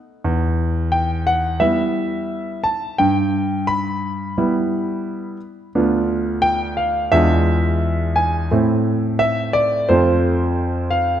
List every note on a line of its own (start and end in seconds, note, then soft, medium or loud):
0.00 0.19 F#5 medium
0.24 1.58 E2 medium
0.92 1.23 G5 medium
1.27 1.61 F#5 medium
1.60 2.60 G3 soft
1.60 2.61 B3 soft
1.60 2.61 E4 soft
1.60 2.64 E5 medium
2.64 2.95 A5 medium
2.98 4.32 G2 medium
2.98 3.68 G5 medium
3.67 5.70 B5 medium
4.38 5.36 G3 medium
4.38 5.36 B3 soft
4.38 5.36 E4 medium
5.75 7.08 D2 medium
5.75 7.08 B3 soft
5.75 7.08 D4 soft
5.75 7.08 F4 soft
6.42 6.73 G5 medium
6.77 7.08 F5 medium
7.12 8.46 E2 medium
7.12 8.46 G#3 soft
7.12 8.46 D4 soft
7.12 8.47 F4 medium
7.12 8.15 E5 medium
8.16 8.50 G#5 medium
8.51 9.85 A2 medium
8.51 9.85 A3 soft
8.51 9.85 C4 soft
8.51 9.85 E4 medium
9.19 9.53 E5 medium
9.53 9.88 D5 medium
9.89 11.20 F2 medium
9.89 11.20 A3 soft
9.89 11.20 C4 soft
9.89 11.20 F4 medium
9.89 10.92 C5 medium
10.91 11.20 F5 medium